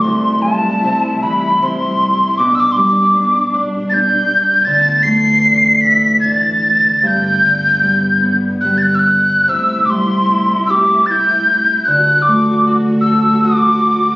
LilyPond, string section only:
\new Staff \with { instrumentName = "String section" } { \clef bass \time 3/4 \key c \lydian \tempo 4 = 76 << { <c e'>2. | <b, d'>2. | <d, e>2. | <g, b>2. |
<c e'>2. | <d, fis'>2. | } \\ { g2.~ | g2. | a,2. | d2. |
a2. | a,2. | } >> }